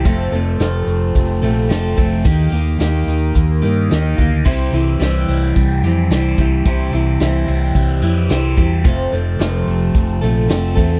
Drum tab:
CC |--------|--------|x-------|--------|
HH |xxxxxxxx|xxxxxxxx|-xxxxxxx|xxxxxxxx|
SD |--o---o-|--o---o-|--o---o-|--o---o-|
BD |o---o--o|o---o--o|o---o--o|o---o--o|

CC |--------|
HH |xxxxxxxx|
SD |--o---o-|
BD |o---o--o|